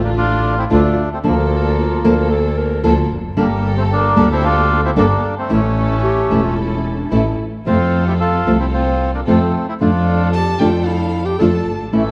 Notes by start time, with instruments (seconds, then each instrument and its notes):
Already playing: double bass A1, string section A3 D4 F4
0.04 bandoneon A#3 D4
0.17 bandoneon D4 F4
0.58 bandoneon C4 E4
0.70 double bass D2, nylon-string guitar D3 A3 D4 F4, string section A3 D4 F4, bandoneon A3 D4
1.12 bandoneon A3 C4
1.23 double bass D2, nylon-string guitar D3 F3 A#3 D4 A4, bandoneon F3, string section A#3 D4 A4
1.28 bandoneon A#3
1.78 clarinet F4
2.04 double bass D2, nylon-string guitar D3 F3 A#3 D4 A4, string section A#3 D4 A4, clarinet A#4
2.31 clarinet A4
2.58 clarinet A#4
2.83 double bass D2, nylon-string guitar D3 F3 A#3 D4 A4, string section A#3 D4 A4, clarinet F4
3.11 double bass F1
3.37 double bass G1, nylon-string guitar D3 G3 A#3 D4 A4, bandoneon G3 A#3, string section A#3 G4 A4
3.77 bandoneon A3 C4
3.92 bandoneon A#3 D4
4.16 double bass D2, nylon-string guitar D3 G3 A#3 D4 A4, string section A#3 G4 A4
4.32 bandoneon C4 E4
4.45 bandoneon D4 F4
4.85 bandoneon C4 E4
4.96 double bass G1, nylon-string guitar D3 G3 A#3 D4 A4, string section A#3 G4 A4, bandoneon A#3 D4
5.39 bandoneon A3 C4
5.49 double bass A1, nylon-string guitar E3 A3 C#4 E4, string section C#4 E4 A4, bandoneon C#4
5.53 bandoneon A3
6.03 clarinet G4
6.30 double bass E1, nylon-string guitar E3 A3 C#4 E4, string section C#4 E4 A4
6.44 clarinet F4
6.57 clarinet E4
6.97 clarinet D4
7.11 double bass A1, nylon-string guitar E3 A3 C#4 E4, string section C#4 E4 A4, clarinet E4
7.66 double bass F2, nylon-string guitar C3 F3 A3 C4 F4, string section C4 F4 A4, bandoneon C4 F4
8.07 bandoneon E4 G4
8.20 bandoneon F4 A4
8.46 double bass C2, nylon-string guitar C3 F3 A3 C4 F4, string section C4 F4 A4
8.59 bandoneon C4 E4
8.73 bandoneon C4 F4
9.14 bandoneon A#3 D4
9.27 double bass F2, nylon-string guitar C3 F3 A3 C4 F4, bandoneon A3 C4, string section C4 F4 A4
9.68 bandoneon C4 E4
9.80 double bass F2, nylon-string guitar D3 A3 D4 F4, string section D4 F4 A4, bandoneon D4 F4
10.33 clarinet G4, violin A5
10.59 double bass F2, nylon-string guitar D3 A3 D4 F4, string section F3 D4 A4, violin G5
10.72 clarinet F4
10.86 clarinet E4, violin F5
11.25 clarinet G4, violin G5
11.39 double bass F2, nylon-string guitar D3 A3 D4 F4, string section D4 F4 A4, clarinet A4, violin A5
11.66 double bass G1
11.92 double bass A1, nylon-string guitar E3 A3 C#4 E4, bandoneon E3 A3, string section C#4 E4 A4